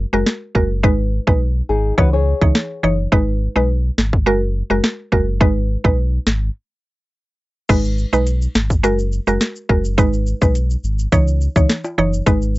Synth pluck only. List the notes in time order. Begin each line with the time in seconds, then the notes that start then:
0.13 G#3 F#4 A#4
0.55 G#3 F#4 A#4
0.83 G#3 D#4 B4
1.27 G#3 D#4 B4
1.98 E3 D#4 C#5
2.41 E3 D#4 C#5
2.83 E3 D#4 C#5
3.12 G#3 D#4 B4
3.56 G#3 D#4 B4
4.26 G#3 F#4 A#4
4.70 G#3 F#4 A#4
5.12 G#3 F#4 A#4
5.41 G#3 D#4 B4
5.84 G#3 D#4 B4
7.69 G#3 D#4 B4
8.13 G#3 D#4 B4
8.83 G#3 F#4 A#4
9.27 G#3 F#4 A#4
9.69 G#3 F#4 A#4
9.98 G#3 D#4 B4
10.42 G#3 D#4 B4
11.12 E3 D#4 C#5
11.56 E3 D#4 C#5
11.98 E3 D#4 C#5
12.26 G#3 D#4 B4